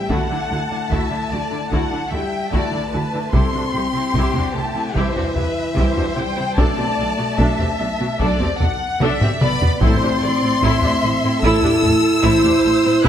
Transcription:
0.09 D2 D3 A3 E4 F#4 F#5 A5, taiko
0.30 D3 D4 E4
0.50 D2 D3 E4 F#4
0.71 D3 D4 E4
0.90 D2 D3 E4 F#4 E5, taiko
1.09 D3 D4 E4
1.29 D2 D3 E4 F#4 D5
1.50 D3 D4 E4
1.70 D2 D3 E4 F#4 F#5, taiko
1.92 D3 D4 E4
2.11 D2 D3 G3 E4 F#4 E5 G5
2.50 D2 D3 A3 E4 F#4 D5 A5, taiko
2.72 D3 D4 E4
2.90 D2 D3 E4 F#4 B4
3.13 D3 D4 E4
3.31 C2 C3 C4 E4 G4 A4 C6, taiko
3.53 C3 D4 F#4
3.72 C2 C3 E4 G4
3.93 C3 C4 E4
4.14 C2 C3 E4 G4, taiko
4.34 C3 D4 F#4, taiko low
4.52 C3 A3 A5
4.56 C2 E4 G4
4.74 C3 C4 E4
4.93 C2 C3 E3 E4 G4 C5 E5, taiko
5.15 C3 D4 F#4, taiko low
5.34 C2 C3 E4 G4 B4, taiko low
5.75 C2 C3 E4 G4 C5, taiko
5.96 C3 D4 F#4, taiko low
6.14 C2 C3 G3 E4 G4 G5
6.36 C3 C4 E4
6.57 B1 B2 A3 D4 A4 D5 A5, taiko
6.77 B2 C4 G4
6.98 B1 B2 D4 A4
7.18 B2 B3 F#4
7.38 B1 B2 D4 A4 E5, taiko
7.58 B2 C4 G4, taiko low
7.79 B1 B2 D4 A4
7.99 B2 B3 F#4
8.19 B1 B2 D4 A4 D5, taiko
8.40 B2 C4 G4, taiko low
8.60 B1 B2 D4 A4 F#5, taiko low
9.00 B1 B2 D4 A4 E5, taiko mid
9.21 B2 C4 G4, taiko low-mid
9.40 B1 B2 B3 D4 A4 D5 B5, taiko mid
9.61 B2 B3 F#4, taiko low
9.81 A1 A2 C4 E4 A4 C5 C6, taiko
10.02 A2 D4 G4
10.22 A1 A2 E4 A4 D5
10.42 A2 C4 E4
10.62 A1 A2 E4 A4 E5, taiko
10.82 A2 D4 G4, taiko low
11.03 A1 A2 E4 A4
11.23 A2 C4 E4
11.42 A1 A2 E4 A4 E6, taiko
11.63 A2 D4 G4, taiko low
11.83 A1 A2 E4 A4, taiko low
12.23 A1 A2 E4 A4 C5, taiko
12.44 A2 D4 G4, taiko low
12.63 A1 A2 E4 A4
12.83 A2 C4 E4
13.03 D2 D3 E4 F#4 A4 B4 F#6, taiko

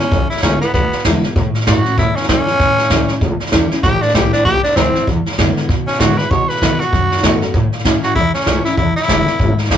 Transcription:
0.00 B3 C#4 E4
0.11 B1 E2, kick, snare
0.30 E4, muted upright bass stroke, snare
0.37 snare
0.42 C#2 D3 G#3 B3 C#4 E4, kick, snare, hi-hat pedal
0.61 B3 E4, muted upright bass stroke, snare
0.74 D2 B2 B3, kick, snare
0.92 muted upright bass stroke, snare
0.99 snare
1.05 E2 D3 G#3 B3 E4, kick, snare, hi-hat pedal
1.23 B3 E4, muted upright bass stroke, snare
1.36 A2, kick, snare
1.54 muted upright bass stroke, snare
1.61 snare
1.66 G2 E3 G3 C#4 E4 F#4, kick, snare, hi-hat pedal
1.85 C#4 E4, muted upright bass stroke, snare
1.97 E2 A2 E4, kick, snare
2.16 C#4, snare
2.23 snare
2.29 F#2 E3 G3 C#4 E4, kick, snare, hi-hat pedal
2.47 C#4 E4, muted upright bass stroke, snare
2.60 E2 A2, kick, snare
2.78 muted upright bass stroke, snare
2.84 snare
2.90 D2 E3 G3 C#4 E4, kick, snare, hi-hat pedal
3.08 C#4 E4, snare
3.21 C#2 E2, kick, snare
3.40 muted upright bass stroke, snare
3.46 snare
3.52 E2 E3 G3 C#4 E4, kick, snare, hi-hat pedal
3.70 C#4 E4, muted upright bass stroke, snare
3.83 A1 A2 G4, kick, snare
4.02 D4, muted upright bass stroke, snare
4.08 snare
4.14 B1 E3 G3 C4 E4 G4, kick, snare, hi-hat pedal
4.33 D4, snare
4.45 C2 E2 G4, kick, snare
4.64 D4, muted upright bass stroke, snare
4.70 snare
4.76 D2 E3 G3 C4 E4, kick, snare, hi-hat pedal
4.94 C4 E4, muted upright bass stroke, snare
5.07 E2, kick, snare
5.26 muted upright bass stroke, snare
5.32 snare
5.38 F#2 D3 G#3 B3 E4, kick, snare, hi-hat pedal
5.56 muted upright bass stroke, snare
5.69 G#2 B2, kick, snare
5.87 C#4, muted upright bass stroke, snare
5.94 snare
6.00 A2 D3 G#3 B3 E4 F#4, kick, snare, hi-hat pedal
6.18 B3 E4 B4, muted upright bass stroke, snare
6.30 B2 C#5, kick, snare
6.48 B4, muted upright bass stroke, snare
6.56 snare
6.62 D#3 A3 B3 F#4, kick, snare, hi-hat pedal
6.80 B3 F#4, muted upright bass stroke, snare
6.93 F#2 C#3, kick, snare
7.10 muted upright bass stroke, snare
7.17 snare
7.23 B2 D#3 A3 B3 F#4, kick, snare, hi-hat pedal
7.41 B3 F#4, muted upright bass stroke, snare
7.54 A2, kick, snare
7.72 muted upright bass stroke, snare
7.79 snare
7.84 G2 E3 G3 C#4 E4, kick, snare, hi-hat pedal
8.03 F#4, muted upright bass stroke, snare
8.15 E2 E4, kick, snare
8.33 C#4, muted upright bass stroke, snare
8.41 snare
8.45 C#2 E3 G3 C#4 E4, kick, snare, hi-hat pedal
8.65 C#4 E4, snare
8.77 E2 E4, kick, snare
8.96 E4, muted upright bass stroke, snare
9.03 snare
9.07 E1 D3 G#3 B3 E4, kick, snare, hi-hat pedal
9.25 B3 E4, muted upright bass stroke, snare
9.39 G#1 G#2, kick, snare
9.58 muted upright bass stroke, snare
9.65 snare
9.70 A1 A2, kick, snare, hi-hat pedal

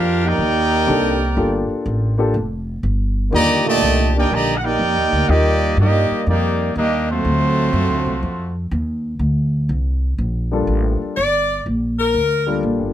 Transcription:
Already playing: F2 D4 F4 G4 A#4 F5
0.26 A#3 D#4 G4 A#4 D5 G5
0.38 D#2
0.87 C2 C4 D4 D#4 G4 A4
1.36 G1 A#3 D4 F4 G4 A4
1.70 muted upright bass stroke
1.86 A1
2.18 A#3 D4 F4 G4 A4
2.34 F1
2.83 G1
3.31 D#2 D3 D#3 G3 A#3 F4 G4 D5 D#5 A#5
3.65 A#2 D3 A3 G4 D5 D#5 A5
3.82 C2
4.15 A#3 D4 D#4 G4 A#4 D5 G5
4.31 A#1 D3 G3 A#3 G4 D5 D#5 A#5
4.57 F#5
4.65 A#3 D#4 G4 A#4 D5 G5
4.79 F2
4.97 D#2
5.12 D2
5.29 D#2 G3 A#3 D#4 F4 G4 D5 D#5
5.77 G2 G3 A#3 D#4 G4 D5 D#5
6.11 muted upright bass stroke
6.27 F2 G3 A#3 D#4 G4 D5
6.76 D#2 G3 A#3 D4 D#4 G4 D#5
7.11 F#3 A3 C4 F4 F#4 C5
7.25 D2
7.73 F#2
7.90 D2
8.06 C2
8.23 F2
8.71 D#2
9.19 D2
9.69 C2
10.18 A#1
10.52 G3 A#3 D4 F4 A4
10.67 A1
11.02 muted upright bass stroke
11.17 G1 D5
11.66 A#1
12.00 A#4
12.14 D2
12.47 G3 A#3 D4 F4 A4
12.63 A#1
12.79 G1

